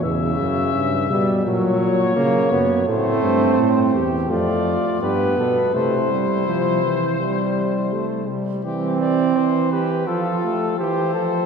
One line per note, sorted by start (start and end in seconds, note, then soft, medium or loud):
0.04 0.39 E2 medium
0.04 1.08 C#3 medium
0.04 1.29 E5 medium
0.39 0.74 F#2 medium
0.75 1.10 G2 medium
1.10 1.48 B2 medium
1.10 1.45 G3 medium
1.45 2.16 A#2 medium
1.45 2.15 F#3 medium
1.45 2.84 C#5 medium
2.16 2.51 C#3 medium
2.16 2.53 A#3 medium
2.51 2.86 F#2 medium
2.51 2.86 B3 medium
2.87 3.22 A2 medium
2.87 3.99 A3 medium
2.87 3.95 C4 medium
2.87 4.00 C5 medium
3.23 3.58 G2 medium
3.59 3.93 A2 medium
3.94 4.29 E2 medium
3.94 4.32 G4 medium
4.30 4.75 F2 medium
4.30 4.97 A3 medium
4.30 5.00 F4 medium
4.30 4.98 D5 medium
5.01 5.35 G2 medium
5.01 5.73 B3 medium
5.01 5.36 G4 medium
5.01 5.76 B4 medium
5.38 5.73 B2 medium
5.38 5.74 A4 medium
5.74 8.24 C3 medium
5.74 6.12 A3 medium
5.74 8.25 E4 medium
5.74 8.29 C5 medium
6.10 6.47 G3 medium
6.47 6.83 F3 medium
6.84 7.19 E3 medium
7.20 7.94 G3 medium
7.92 8.30 A3 medium
8.29 8.64 G3 medium
8.65 9.32 E3 medium
8.65 9.68 C4 medium
8.65 8.98 G4 medium
9.00 9.38 D5 medium
9.36 10.06 E3 medium
9.36 9.74 C5 medium
9.72 10.09 G4 medium
9.72 10.07 B4 medium
10.07 10.43 F3 medium
10.07 10.78 F4 medium
10.07 10.77 A4 medium
10.44 10.78 A3 medium
10.78 11.16 E3 medium
10.78 11.14 G4 medium
10.78 11.46 C5 medium
11.14 11.46 F3 medium
11.14 11.46 A4 medium